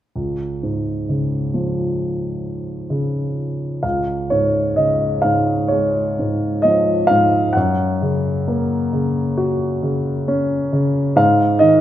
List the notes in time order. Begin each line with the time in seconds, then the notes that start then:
0.16 C#2
0.63 G#2
1.09 C#3
1.54 F3
2.90 C#3
3.83 C#2 F5
4.30 G#2 C#5
4.76 C#3 D#5
5.22 G#2 F5
5.68 G#3 C#5
6.19 G#2
6.62 F3 D#5
7.07 G#2 F5
7.53 F#2 F#5
8.02 C#3
8.48 A#3
8.93 C#3
9.37 F#4
9.83 C#3
10.28 C#4
10.73 C#3
11.16 G#2 F5
11.59 D#3 D#5